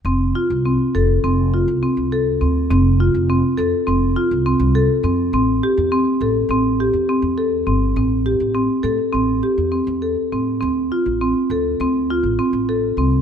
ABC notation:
X:1
M:9/8
L:1/16
Q:3/8=68
K:F
V:1 name="Marimba"
C2 F2 C2 A2 C2 F2 C2 A2 C2 | C2 F2 C2 A2 C2 F2 C2 A2 C2 | C2 G2 C2 A2 C2 G2 C2 A2 C2 | C2 G2 C2 A2 C2 G2 C2 A2 C2 |
C2 F2 C2 A2 C2 F2 C2 A2 C2 |]
V:2 name="Upright bass" clef=bass
F,,,2 z C,,2 z F,,,2 F,,,3 C,, z C,,3 D,,2 | F,,,3 F,,,2 z F,, z F,,,2 z C,,2 C,,2 z F,,2 | A,,,2 z E,,2 z A,,,2 A,,,3 E,, z E,,3 G,,,2 | A,,,3 A,,,2 z A,, z A,,,2 z E,,2 E,,2 z A,,2 |
D,,2 z A,,,2 z D,,2 D,,3 A,,, z A,,,3 C,,2 |]